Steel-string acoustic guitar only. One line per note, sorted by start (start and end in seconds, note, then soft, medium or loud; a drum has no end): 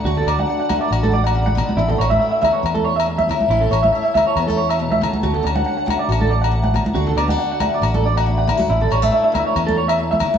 0.00 0.71 A3 medium
0.06 1.78 D3 medium
0.06 0.48 F#4 medium
0.28 1.76 D4 medium
0.50 0.92 F#4 medium
0.72 2.00 A3 medium
0.93 1.76 F#4 medium
1.35 1.55 C#3 medium
1.55 1.77 B2 medium
1.78 3.07 A2 medium
1.78 muted steel-string acoustic guitar stroke medium
2.01 3.71 A3 medium
2.22 3.28 E4 medium
2.42 3.47 E3 medium
2.63 muted steel-string acoustic guitar stroke medium
3.06 3.50 E2 medium
3.29 3.94 E4 medium
3.51 4.79 A2 medium
3.51 4.37 C#4 medium
3.71 5.86 A3 medium
3.95 5.23 E4 medium
4.16 5.21 E3 medium
4.38 4.50 B3 medium
4.50 5.24 C#4 medium
4.79 5.01 B2 medium
5.01 5.23 C#3 medium
5.23 6.94 D3 medium
5.23 5.64 F#4 medium
5.43 6.93 D4 medium
5.64 6.08 F#4 medium
5.86 7.21 A3 medium
6.09 6.73 F#4 medium
6.51 6.95 A2 medium
6.74 muted steel-string acoustic guitar stroke medium
6.95 8.69 D3 medium
6.95 7.39 F#4 medium
7.18 7.30 B3 medium
7.30 8.70 D4 medium
7.40 7.81 F#4 medium
7.61 8.90 A3 medium
7.82 8.47 F#4 medium
8.26 8.69 A2 medium
8.47 8.57 E4 medium
8.57 8.68 F#4 medium
8.70 10.00 A2 medium
8.70 9.56 C#4 medium
8.91 9.02 G3 medium
9.02 10.38 A3 medium
9.12 10.18 E4 medium
9.32 10.38 E3 medium
9.56 10.38 C#4 medium
9.98 10.38 E2 medium
10.20 10.38 E4 medium